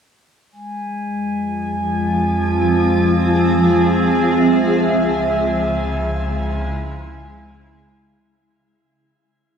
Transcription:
0.50 4.33 F2 medium
0.50 4.38 F3 medium
0.50 8.27 G#3 medium
0.50 8.28 G#5 medium
0.88 4.39 F4 medium
1.12 4.41 C4 medium
2.29 5.95 G#4 medium
4.38 8.20 C#2 medium
4.38 8.25 C#3 medium
4.38 7.25 E5 loud
5.12 8.25 G#3 medium
5.86 8.25 E4 medium

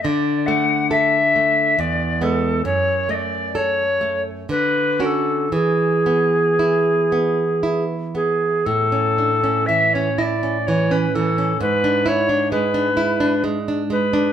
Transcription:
0.02 1.75 D3 soft
0.02 0.48 D5 medium
0.02 0.07 D#5 medium
0.46 1.18 A3 soft
0.46 0.90 F#5 medium
0.91 1.62 A4 soft
0.91 1.81 E5 medium
1.36 1.79 A3 soft
1.79 2.63 E2 medium
1.79 2.25 D5 medium
2.21 2.61 G#3 soft
2.21 2.61 B3 soft
2.21 2.65 A4 medium
2.65 4.45 F#2 soft
2.65 3.12 C#5 medium
3.09 3.82 A3 soft
3.09 3.15 D#5 medium
3.14 3.57 D5 medium
3.55 4.30 A4 soft
3.55 4.22 C#5 medium
4.01 4.49 A3 soft
4.49 5.48 D3 soft
4.49 5.03 B4 medium
5.00 5.48 C#4 soft
5.00 5.48 F#4 soft
5.00 5.07 A#4 soft
5.06 5.54 A4 soft
5.52 8.62 E3 soft
5.52 7.83 G#4 medium
6.06 6.91 B3 soft
6.59 7.43 E4 soft
7.12 7.94 B3 soft
7.63 8.45 E4 soft
8.15 8.66 B3 soft
8.15 8.67 G#4 medium
8.66 11.57 A2 soft
8.66 9.68 A4 medium
8.92 9.33 C#4 soft
9.18 9.43 D4 soft
9.44 9.83 C#4 soft
9.66 10.08 E3 soft
9.66 9.95 E5 medium
9.93 10.34 C#4 soft
9.93 10.20 C#5 medium
10.18 10.57 E4 soft
10.18 10.24 D#5 medium
10.23 10.68 D5 medium
10.43 10.81 C#4 soft
10.67 11.06 E3 soft
10.67 10.93 C#5 medium
10.91 11.29 C#4 soft
10.91 11.16 B4 medium
11.15 11.52 E3 soft
11.15 11.60 A4 medium
11.38 11.61 C#4 soft
11.61 14.33 G#2 medium
11.61 12.09 B4 medium
11.84 12.20 D4 soft
12.06 12.29 E4 soft
12.06 12.51 C#5 medium
12.29 12.65 D4 soft
12.51 12.89 G#3 soft
12.51 13.43 B4 medium
12.74 13.12 D4 soft
12.97 13.35 E4 soft
13.20 13.58 D4 soft
13.44 13.81 G#3 soft
13.68 14.05 D4 soft
13.90 14.27 G#3 soft
13.90 14.33 B4 medium
14.13 14.33 D4 soft

